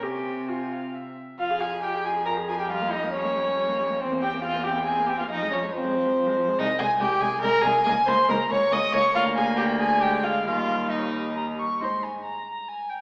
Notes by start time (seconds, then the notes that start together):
0.03 C3 C4 G4 G#5
0.48 F4 G#5
0.73 F5
0.95 E5
1.39 F2 F4 F5
1.50 G#4
1.60 F4 G#4 G#5
1.72 G#4
1.82 F4 G4 G5
1.95 G#4
2.05 F4 G#4 G#5
2.16 G#4
2.25 F4 A#4 A#5
2.37 G#4
2.48 F4 G#4 G#5
2.59 G4 G#4 G5
2.70 G3 F4 F5
2.82 A#3
2.91 G3 D#4 D#5
3.03 A#3
3.11 G3 C#4 C#5
3.24 A#3
3.35 G3
3.47 A#3
3.57 G3
3.67 A#3
3.79 G3
3.90 A#3
4.00 E2 C4 C5
4.12 A#3
4.21 C4 G4 G5
4.34 A#3
4.43 C4 F4 F5
4.55 A#3
4.63 C4 G4 G5
4.77 A#3
4.84 C4 G#4
4.88 G#5
4.99 A#3
5.06 C4 G4 G5
5.19 A#3 F4 F5
5.30 F2 F3 D#4 D#5
5.42 G#3
5.50 F3 C#4 C#5
5.63 G#3
5.73 F3 C4 C5
5.84 G#3
5.95 F3
6.05 G#3
6.16 F3
6.27 G#3
6.37 F3
6.48 G#3
6.58 C2 G#3 D#4 D#5
6.79 C2 G#3 G#4 G#5
7.00 C2 G#3 G4 G5
7.21 C2 G#3 G#4 G#5
7.41 C2 G#3 A#4 A#5
7.61 C2 G#3 G#4
7.66 G#5
7.83 C#2 A#3 G#4 G#5
8.06 C#2 A#3 C5 C6
8.29 C#2 A#3 A#4 A#5
8.50 C#2 A#3 C#5 C#6
8.71 C#2 A#3 D#5 D#6
8.93 C#2 A#3 C#5 C#6
9.13 D2 A#3 F4 F5
9.36 G#4 G#5
9.56 G4 G5
9.79 G#4 G#5
10.00 G#3 G4 G5
10.23 F4 F5
10.45 D#2 G3 F4 F5
10.90 G3 D#4 D#5
10.99 C#5
11.05 D#5
11.37 A#5
11.59 C#6
11.80 G#2 D#4 C5 C6
12.04 G#5
12.25 A#5
12.68 G#5
12.89 G5